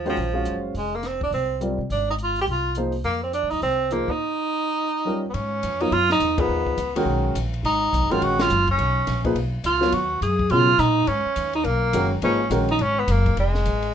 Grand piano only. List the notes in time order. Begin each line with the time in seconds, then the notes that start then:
0.05 D#3 G#3 C#4 F#4 C5
0.34 G#3 C#4 F#4 C5 F5
1.61 G3 C4 F4 A#4 D5
2.77 F3 A#3 D#4 G#4 C5
3.91 F3 A#3 D#4 G#4 C5
5.05 G3 C#4 D#4 F4 A#4
5.81 F#3 B3 F4 A#4 C#5
6.37 F3 D#4 G#4 A#4 B4
6.96 D#3 G#3 C#4 F#4 A#4
8.10 D#3 G#3 C#4 F#4 A#4
9.24 F3 A#3 D#4 G#4 B4
9.81 F#3 B3 F4 A#4 C#5
10.52 C#3 F#3 B3 F4 G#4
11.94 D#3 G#3 C#4 F#4 A#4
12.23 F3 A#3 D#4 G#4 B4
12.50 D#3 G#3 C#4 F#4 A#4